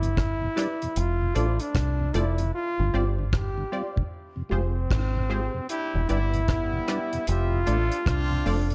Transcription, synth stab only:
0.56 0.79 E4 medium
0.56 0.79 G4 medium
0.56 0.79 B4 medium
0.56 0.79 D5 loud
1.34 1.58 F4 medium
1.34 1.58 A4 medium
1.34 1.58 C5 medium
1.34 1.58 D5 loud
2.14 2.37 F4 loud
2.14 2.37 A4 medium
2.14 2.37 C5 medium
2.14 2.38 D5 loud
2.94 3.16 F4 loud
2.94 3.16 G4 medium
2.94 3.17 C5 medium
2.94 3.17 D5 loud
3.72 3.95 F4 medium
3.72 3.95 G4 medium
3.72 3.95 C5 medium
3.72 3.95 D5 loud
4.51 4.74 F4 loud
4.51 4.74 G4 medium
4.51 4.74 G#4 medium
4.51 4.74 C5 loud
5.29 5.52 F4 medium
5.29 5.53 G4 medium
5.29 5.53 G#4 medium
5.29 5.53 C5 loud
6.08 6.31 E4 medium
6.08 6.32 G4 medium
6.08 6.32 B4 medium
6.08 6.32 D5 loud
6.87 7.10 E4 medium
6.87 7.11 G4 medium
6.87 7.11 B4 medium
6.87 7.11 D5 loud
7.66 7.89 F4 medium
7.66 7.89 A4 medium
7.66 7.90 C5 medium
7.66 7.90 D5 medium
8.46 8.68 F4 loud
8.46 8.69 A4 medium
8.46 8.69 C5 medium
8.46 8.69 D5 loud

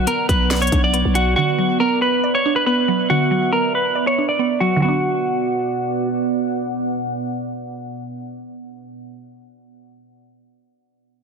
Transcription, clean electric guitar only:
0.07 0.27 A#4 medium
0.29 0.60 B4 medium
0.62 0.82 C#5 medium
0.84 1.14 D5 medium
1.15 1.35 F#4 medium
1.36 1.77 F#4 loud
1.80 2.00 A#4 medium
2.02 2.33 B4 medium
2.35 2.55 C#5 medium
2.56 2.65 B4 medium
2.66 3.07 B4 medium
3.10 3.50 F#4 loud
3.53 3.73 A#4 medium
3.75 4.06 B4 medium
4.07 4.27 C#5 medium
4.29 4.59 D5 medium
4.60 4.81 F#4 medium
4.82 6.08 F#4 medium

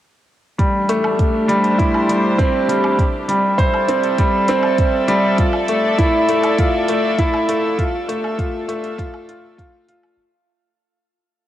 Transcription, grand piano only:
0.58 0.76 G3 medium
0.89 1.06 A3 medium
1.48 1.77 G3 medium
1.78 1.95 E4 medium
2.09 2.37 G3 medium
2.38 2.67 C4 medium
2.68 2.97 G3 medium
3.28 3.57 G3 medium
3.58 3.75 C5 medium
3.88 4.05 C4 medium
4.18 4.36 G3 medium
4.49 4.66 C4 medium
5.08 5.37 G3 medium
5.38 5.55 F4 medium
5.69 5.97 A3 medium
5.98 6.27 E4 medium
6.29 6.56 A3 medium
6.59 6.76 F4 medium
6.89 7.17 A3 medium
7.19 7.47 E4 loud
7.49 7.76 A3 medium
7.78 7.96 F4 medium
8.08 8.36 A3 medium
8.39 8.56 F4 medium
8.68 8.96 A3 medium
8.98 9.15 F4 loud
9.29 9.46 F4 medium
9.58 9.75 F4 medium
9.88 10.05 F4 medium

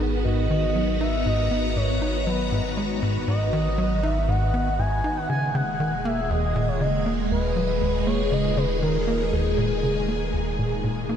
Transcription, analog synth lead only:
0.00 0.24 G#4 medium
0.25 1.02 D#5 loud
1.01 1.27 E5 loud
1.26 1.78 D#5 loud
1.76 2.26 C#5 loud
2.27 2.74 B4 medium
3.27 4.05 D#5 loud
4.03 4.30 E5 loud
4.29 4.80 F#5 loud
4.79 5.18 G#5 loud
5.17 5.29 F#5 loud
5.29 5.56 G#5 loud
5.54 6.06 F#5 loud
6.05 6.32 E5 medium
6.30 6.69 D#5 loud
6.68 6.82 C#5 medium
6.81 7.18 D#5 loud
7.31 8.08 B4 loud
8.07 8.33 C#5 medium
8.32 8.59 D#5 loud
8.57 8.82 B4 medium
8.83 9.34 A#4 medium
9.33 11.09 G#4 medium

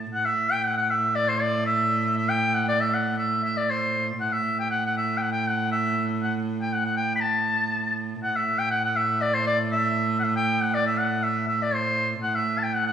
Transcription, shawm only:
0.13 0.27 F#5 medium
0.25 0.54 E5 medium
0.52 0.67 G5 medium
0.65 0.77 F#5 medium
0.77 0.92 F#5 medium
0.91 1.17 E5 medium
1.15 1.30 D5 medium
1.29 1.43 C5 medium
1.42 1.66 D5 medium
1.66 2.13 E5 loud
2.17 2.31 E5 medium
2.29 2.56 G5 medium
2.54 2.67 F#5 medium
2.69 2.82 D5 medium
2.80 2.96 E5 medium
2.94 3.18 F#5 medium
3.18 3.42 E5 medium
3.44 3.58 E5 medium
3.57 3.72 D5 medium
3.70 4.07 C5 medium
4.20 4.34 F#5 medium
4.33 4.57 E5 medium
4.60 4.70 G5 medium
4.70 4.82 F#5 medium
4.86 4.96 F#5 medium
4.98 5.19 E5 medium
5.17 5.23 G5 medium
5.22 5.32 F#5 medium
5.32 5.49 G5 medium
5.48 5.72 F#5 medium
5.72 6.07 E5 medium
6.22 6.34 F#5 medium
6.62 6.75 G5 medium
6.73 6.85 F#5 medium
6.86 6.96 F#5 medium
6.97 7.14 G5 medium
7.16 7.22 B5 medium
7.21 7.97 A5 medium
8.23 8.37 F#5 medium
8.36 8.60 E5 medium
8.59 8.70 G5 medium
8.71 8.83 F#5 loud
8.85 8.98 F#5 medium
8.96 9.23 E5 medium
9.21 9.36 D5 medium
9.34 9.46 C5 medium
9.47 9.58 D5 medium
9.72 10.16 E5 loud
10.19 10.25 F#5 medium
10.24 10.36 E5 medium
10.37 10.63 G5 medium
10.61 10.76 F#5 medium
10.74 10.86 D5 medium
10.87 10.99 E5 medium
10.98 11.25 F#5 medium
11.23 11.48 E5 medium
11.48 11.64 E5 medium
11.62 11.76 D5 medium
11.75 12.11 C5 medium
12.23 12.37 F#5 medium
12.35 12.60 E5 medium
12.58 12.65 A5 medium
12.63 12.76 G5 medium
12.74 12.86 F#5 medium
12.87 12.93 F#5 medium

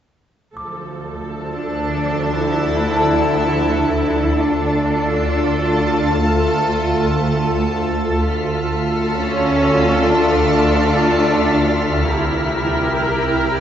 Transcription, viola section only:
0.56 4.34 F3 soft
0.56 4.35 A4 soft
4.38 8.15 F4 soft
4.38 8.15 A4 soft
8.19 12.05 F4 soft
8.19 12.05 A4 soft
12.09 13.60 G4 soft
12.09 13.60 A#4 soft

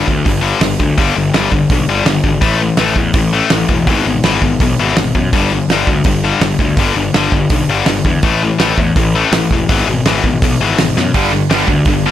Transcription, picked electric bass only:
0.08 0.21 D2 medium
0.26 0.52 G1 medium
0.61 0.74 G1 loud
0.80 0.93 D2 medium
0.98 1.11 G1 medium
1.16 1.29 G1 medium
1.35 1.48 G1 medium
1.52 1.65 G1 medium
1.70 1.83 B1 medium
1.88 2.01 G1 medium
2.05 2.19 G1 loud
2.24 2.37 G#1 medium
2.42 2.68 A1 loud
2.80 2.93 A1 medium
2.96 3.09 E2 medium
3.14 3.41 A1 medium
3.51 3.65 A1 medium
3.69 3.87 E1 medium
3.87 4.00 G#1 medium
4.05 4.19 G#1 medium
4.24 4.37 G#1 medium
4.42 4.55 G#1 medium
4.61 4.74 B1 medium
4.80 4.93 G#1 medium
4.98 5.11 G#1 medium
5.15 5.28 F#2 medium
5.33 5.59 G1 medium
5.69 5.82 G1 medium
5.87 6.00 D2 medium
6.05 6.32 G1 medium
6.41 6.54 G1 medium
6.59 6.73 D2 medium
6.77 6.91 G1 medium
6.95 7.09 G1 medium
7.14 7.28 G1 medium
7.32 7.45 G1 medium
7.50 7.64 B1 loud
7.68 7.81 G1 medium
7.86 8.00 G1 loud
8.05 8.18 E2 medium
8.23 8.49 A1 loud
8.60 8.73 A1 medium
8.78 8.91 E2 medium
8.97 9.23 A1 medium
9.32 9.45 A1 medium
9.51 9.64 E1 medium
9.69 9.82 G#1 loud
9.88 10.01 G#1 medium
10.06 10.19 G#1 medium
10.23 10.36 G#1 medium
10.42 10.55 B1 medium
10.61 10.74 G#1 medium
10.80 10.92 G#1 medium
10.97 11.10 F#2 medium
11.15 11.41 G1 medium
11.51 11.64 G1 medium
11.67 11.81 D2 medium
11.86 12.11 G1 medium

